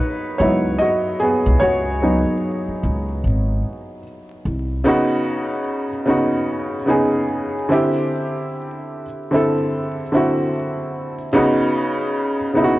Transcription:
Already playing: felt piano F#3 B3 D#4 F#4 B4 C#5 D#5
0.38 upright bass C#2, felt piano F#3 B3 D#4 E4 C#5
0.78 felt piano F#4 D#5
1.20 felt piano B3 G#4
1.46 upright bass C2
1.60 upright bass C#2, felt piano F#4 C#5
2.02 felt piano F#3 B3 D#4
2.68 muted upright bass stroke
2.83 upright bass C#2
3.24 upright bass G#1
4.45 upright bass C2
4.84 felt piano C#3 B3 D#4 F#4
6.05 felt piano C#3 B3 D#4
6.10 felt piano F#4
6.86 felt piano C#3 B3 D#4 G#4
7.69 felt piano D3 C4 E4 G4
9.31 felt piano D3 C4 E4
9.35 felt piano A4
10.12 felt piano D3 C4 E4
10.16 felt piano F#4
11.33 felt piano C#3 B3 D#4
11.37 felt piano F#4
12.54 felt piano C#3 B3 D#4
12.58 felt piano E4
12.64 felt piano F#4

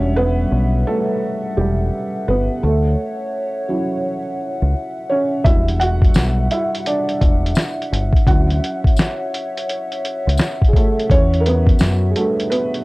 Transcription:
Already playing: fingered electric bass E1, felt piano G3 C#4 D4 F#4 C#5, analog synth pad G3 E5 F#5
0.16 felt piano B3 B4
0.52 fingered electric bass B1
0.87 felt piano A3 A4
1.57 fingered electric bass E1, felt piano G3 G4
2.28 fingered electric bass G1, felt piano B3 B4
2.62 fingered electric bass D2, felt piano A3 A4, analog synth pad C#5 E5
3.68 felt piano F#3 C#4 E4
4.62 fingered electric bass C#2
5.10 felt piano C#4 C#5
5.44 fingered electric bass E1, felt piano G3 D4 E4 F#4 E5, analog synth pad G3, kick, closed hi-hat
5.68 closed hi-hat
5.80 felt piano F#4 F#5, closed hi-hat
6.02 kick, closed hi-hat
6.14 fingered electric bass B1, snare, tambourine
6.18 closed hi-hat
6.51 felt piano E4 E5, closed hi-hat
6.75 closed hi-hat
6.86 felt piano D4 D5, closed hi-hat
7.09 closed hi-hat
7.21 fingered electric bass E1, kick, closed hi-hat
7.46 closed hi-hat
7.55 snare, closed hi-hat, tambourine
7.82 closed hi-hat
7.92 fingered electric bass G1, closed hi-hat
8.13 kick, closed hi-hat
8.26 fingered electric bass D2, felt piano F#3 C#4 E4 F#4 F#5, analog synth pad C#5, kick, closed hi-hat
8.50 closed hi-hat
8.64 closed hi-hat
8.84 kick, closed hi-hat
8.97 snare, tambourine
9.02 closed hi-hat
9.34 closed hi-hat
9.57 closed hi-hat
9.69 closed hi-hat
9.92 closed hi-hat
10.05 closed hi-hat
10.27 fingered electric bass C#2, closed hi-hat
10.38 snare, closed hi-hat, tambourine
10.62 kick, closed hi-hat
10.69 felt piano G#4
10.73 felt piano A3 A4, kick, closed hi-hat
10.99 closed hi-hat
11.09 fingered electric bass E2, felt piano C#4 C#5, analog synth pad F#4, kick, closed hi-hat
11.34 closed hi-hat
11.40 felt piano A#4
11.46 felt piano B3 B4, closed hi-hat
11.67 kick, closed hi-hat
11.79 fingered electric bass F#2, snare, tambourine
11.83 closed hi-hat
12.10 felt piano G#4
12.16 felt piano G3 A3 D4 F#4 A4, closed hi-hat
12.40 closed hi-hat
12.50 felt piano B3 B4, closed hi-hat
12.74 closed hi-hat

